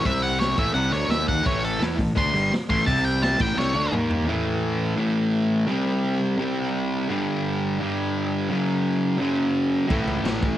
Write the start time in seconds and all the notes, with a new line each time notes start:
0.04 C2 C3 G3 C4 E5, kick, open hi-hat
0.22 F#5, open hi-hat
0.40 C#5, snare, open hi-hat
0.57 A1 A2 E3 A3 E5, kick, crash
0.74 C2 C3 G3 C4 F#5
0.92 D2 D3 A3 D4 C#5, snare, open hi-hat
1.08 D#2 D#3 A#3 D#4 E5, snare, open hi-hat
1.28 F#5, kick, open hi-hat
1.43 A1 A2 E3 A3 C#5, kick, open hi-hat
1.64 A4, open hi-hat
1.79 E2 E3 B3 E4, snare, open hi-hat
1.96 A1 A2 E3, kick, open hi-hat
2.15 D2 D3 A3 D4 C6, kick, open hi-hat
2.33 G1 G2 D3 G3, open hi-hat
2.50 muted fingered electric bass stroke, muted distorted electric guitar stroke, snare, open hi-hat
2.69 A1 A2 E3 A3 C6, kick, open hi-hat
2.86 C2 C3 G3 C4 A5, kick, open hi-hat
3.05 G5, open hi-hat
3.22 A5, snare, open hi-hat
3.39 A1 A2 E3 A3 G5, kick, crash
3.56 C2 C3 G3 C4 C#5, snare
3.75 D2 D3 A3 D4
3.92 D#2 D#3 A#3 D#4, mid tom
4.10 floor tom
4.26 A2 E3 A3
4.96 A2 E3 A3
5.67 C3 G3 C4
6.38 C3 G3 C4
7.08 G2 D3 G3
7.79 G2 D3 G3
8.49 F#2 C#3 F#3
9.18 F#2 C#3 F#3
9.88 A1 A2 E3 A3, kick, crash
10.06 C#2, crash
10.23 A1, snare, crash
10.43 A1, kick, crash